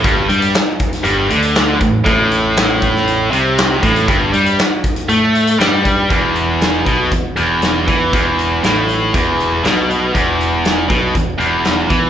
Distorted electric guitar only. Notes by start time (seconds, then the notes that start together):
0.03 G2
0.28 G3
1.04 G2
1.29 D3
1.81 A2
2.04 A2
3.31 C3
3.83 A2
4.08 G2
4.33 G3
5.09 A3
5.59 G3
6.10 E2
6.86 B2
7.11 E2
7.36 E2
7.87 E3
8.12 E2
8.63 A2
9.13 E2
9.63 B2
10.13 E2
10.88 B2
11.14 E2
11.38 E2
11.88 E3